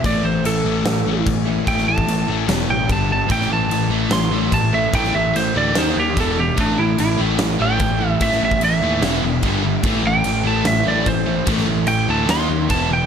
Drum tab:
CC |x---x---x---x---|x---x---x---x---|x---x---x---x---|x---x---x---x---|
SD |--------o-------|-o------o-------|-o------o-------|-o------o-------|
BD |o-----------o---|o--o--------o---|o-----------o---|o-----------o---|

CC |x---x---x---x---|x---x---x---x---|x---x---x---x---|x---x---x---x---|
SD |--------o-------|-o------o-------|--------o-------|-o------o-------|
BD |o-----------o---|o--o--------o---|o-----------o---|o-----------o---|